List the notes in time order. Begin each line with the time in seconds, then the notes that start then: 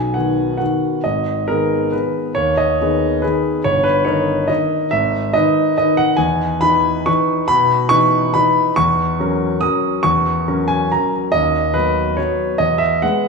Already playing: B1 G#5
0.14 D#3 B3 F#4 F#5
0.58 D#3 B3 F#4 F#5
1.04 G#1 D#5
1.48 D#3 B3 G#4 A#4
1.92 D#3 B3 G#4 B4
2.35 D#2 C#5
2.57 D#5
2.81 D#3 B3 G#4
3.22 D#3 B3 G#4 B4
3.64 G1 C#5
3.84 B4
4.05 D#3 D#4 A#4 C#5
4.48 D#3 D#4 A#4 D#5
4.91 G#1 E5
5.33 D#3 D#4 B4 D#5
5.78 D#3 D#4 B4 D#5
5.97 F#5
6.17 E2 G#5
6.61 E3 D#4 B4 B5
7.06 E3 D#4 B4 C#6
7.48 B2 B5
7.89 E3 D#4 B4 C#6
8.34 E3 D#4 B4 B5
8.76 E2 C#6
9.20 F#3 C#4 A#4
9.61 F#3 C#4 A#4 D#6
10.03 E2 C#6
10.48 F#3 C#4 A#4
10.68 G#5
10.92 F#3 C#4 A#4 A#5
11.32 D#2 D#5
11.74 F#3 B3 B4
12.17 F#3 B3 B4 C#5
12.58 E2 D#5
12.78 E5
13.02 G#3 B3 B4 F#5